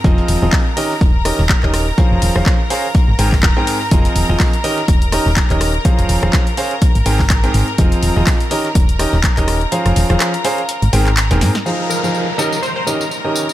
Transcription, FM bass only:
X:1
M:4/4
L:1/16
Q:"Swing 16ths" 1/4=124
K:Ebmix
V:1 name="FM bass" clef=bass
F,,, z E,,, E,,, z4 E,,,2 z E,,, z E,,,2 z | z F,,, E,,, E,,, z4 z A,,, A,,,2 E,,, z3 | F,,, z E,,, E,,, z4 E,,,2 z E,,, z E,,,2 z | z F,,, E,,, E,,, z4 z A,,, A,,,3 z A,,, z |
F,,, z E,,, E,,, z4 E,,,2 z E,,, z E,,,2 z | z F,,, E,,, E,,, z4 z A,,, A,,,3 E,,, A,, z | z16 |]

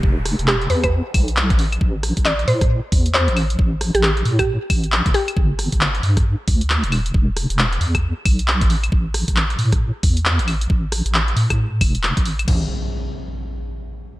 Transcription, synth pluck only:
X:1
M:4/4
L:1/16
Q:"Swing 16ths" 1/4=135
K:Am
V:1 name="Synth pluck"
z4 G z B B z8 | z4 d z c z4 z c z3 | z3 G G z2 G z6 G2 | z16 |
z16 | z16 | z16 | z16 |]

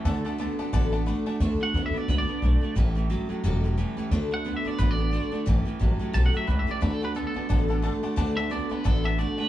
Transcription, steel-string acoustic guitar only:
X:1
M:4/4
L:1/8
Q:"Swing" 1/4=177
K:D
V:1 name="Steel-string acoustic guitar"
[D,A,DFA] [DFA] [A,DFA] [DFA] [D,A,DFA] [DFA] [A,DFA] [DFA] | [D,A,DFA] [FA] [A,DFA] [DFA] [D,A,DFA] [DFA] [A,DFA] [DFA] | [A,,E,G,CGA] [G,CGA] [G,CGA] [G,CGA] [A,,E,G,CGA] [G,CGA] [G,CGA] [G,CGA] | [D,A,DFA] [DFA] [A,DFA] [DFA] [D,A,DFA] [DFA] [A,DFA] [DFA] |
[A,,E,G,CGA] [G,CGA] [G,CGA] [G,CGA] [A,,E,G,CGA] [G,CGA] [G,CGA] [G,CGA] | [D,A,DFA] [DFA] [A,DFA] [DFA] [D,A,DFA] [DFA] [A,DFA] [DFA] | [D,A,DFA] [DFA] [A,DFA] [DFA] [D,A,DFA] [DFA] [A,DFA] [DFA] |]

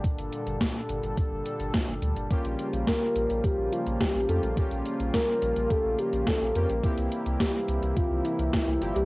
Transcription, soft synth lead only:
X:1
M:4/4
L:1/16
Q:1/4=106
K:Bblyd
V:1 name="Soft synth lead"
z16 | z4 B4 G2 F2 G2 A2 | z4 B4 A2 G2 A2 B2 | z4 G4 F2 E4 F G |]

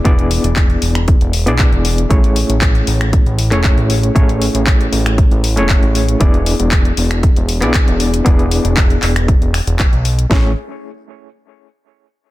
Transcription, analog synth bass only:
X:1
M:4/4
L:1/16
Q:1/4=117
K:A
V:1 name="Analog synth bass" clef=bass
E,,,3 E,,,3 E,,,3 E,,,2 B,,, z E,,,3 | A,,,3 A,,,3 A,,,3 A,,,2 E,,, z A,,,3 | A,,,3 A,,,3 A,,,3 A,,,2 E,,, z A,,,3 | E,,,3 E,,,3 E,,,3 E,,,2 B,,, z E,,,3 |
E,,,3 E,,,3 E,,,3 E,,, z E,,, z B,,,3 | A,,,2 z12 z2 |]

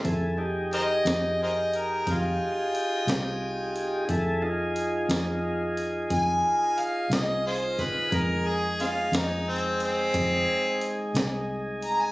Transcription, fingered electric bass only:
X:1
M:12/8
L:1/8
Q:3/8=59
K:Fm
V:1 name="Fingered electric bass" clef=bass
F,,3 F,,3 F,, z2 C,,3 | F,,3 F,,3 F,, z2 C,,3 | F,,3 F,,3 F,, z2 C,,3 |]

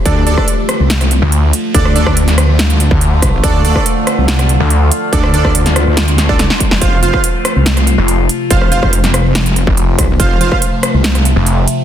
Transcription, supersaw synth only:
X:1
M:4/4
L:1/16
Q:1/4=142
K:Ddor
V:1 name="Supersaw synth"
[DAd]2 [DAd]2 z12 | [DAd]2 [DAd]2 z12 | [DAd]2 [DAd]2 z12 | [DAd]2 [DAd]2 z6 z [DAd] z4 |
[Fcf]2 [Fcf]2 z12 | [Fcf]2 [Fcf]2 z12 | [Fcf]2 [Fcf]2 z12 |]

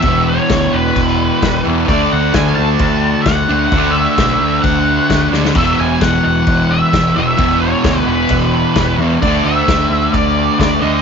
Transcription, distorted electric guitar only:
X:1
M:4/4
L:1/8
Q:1/4=131
K:Dlyd
V:1 name="Distorted electric guitar" clef=bass
[E,,B,,E,]6- [E,,B,,E,] [E,,B,,E,] | [D,A,D]6- [D,A,D] [D,A,D] | [D,A,D]6- [D,A,D] [D,A,D] | [E,,B,,E,]6- [E,,B,,E,] [E,,B,,E,] |
[E,,B,,E,]6- [E,,B,,E,] [E,,B,,E,] | [D,A,D]6- [D,A,D] [D,A,D] |]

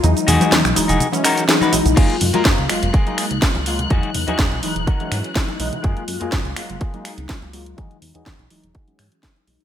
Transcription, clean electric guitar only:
X:1
M:4/4
L:1/16
Q:"Swing 16ths" 1/4=124
K:F#
V:1 name="Clean electric guitar"
z2 [DFG]2 z3 [DFG] z2 [DFA]2 z [DFB] z2 | [A,EG]2 z [A,EA]3 z2 [A,EG]2 z6 | [DFG]2 z [DFG]3 z2 [DFA]2 z6 | [A,EG]2 z [A,EG]3 z2 [A,EG]2 z6 |
[DFG]2 z [DFG]3 z2 [DFG]2 z6 |]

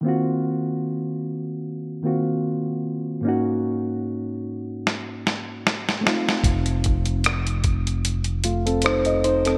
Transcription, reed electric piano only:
X:1
M:4/4
L:1/16
Q:"Swing 16ths" 1/4=75
K:Ebdor
V:1 name="Reed electric piano"
[E,B,CFG]8- [E,B,CFG]2 [E,B,CFG]6 | [A,,B,DEG]12- [A,,B,DEG]2 [=A,CEF]2- | [=A,CEF]8- [A,CEF]2 [A,F] [C=A] [Ec] e [Ec] [CA] |]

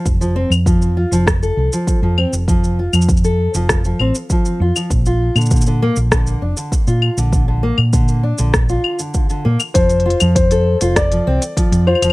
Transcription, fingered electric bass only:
X:1
M:4/4
L:1/16
Q:1/4=99
K:F
V:1 name="Fingered electric bass" clef=bass
F,,,3 F,,4 F,,,3 C,, z2 F,, z F,,,- | F,,,3 F,,4 F,,,3 A,,, z3 F,, z | B,,,3 B,,4 B,,,3 F,,, z2 B,, z B,,,- | B,,,3 B,,4 B,,,3 z4 B,, z |
F,,,3 F,,4 F,,,3 C,, z2 F,, z F,,, |]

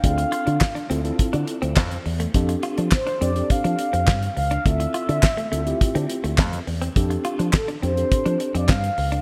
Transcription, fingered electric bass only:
X:1
M:4/4
L:1/16
Q:1/4=104
K:F
V:1 name="Fingered electric bass" clef=bass
D,,2 z D, z2 D,,2 z D, z D,, F,,2 E,,2 | F,,2 z F, z2 F,,2 z F, z F,, G,,2 _D,,2 | D,,2 z D, z2 D,,2 z D, z D,, F,,2 E,,2 | F,,2 z F, z2 F,,2 z F, z F,, G,,2 _D,,2 |]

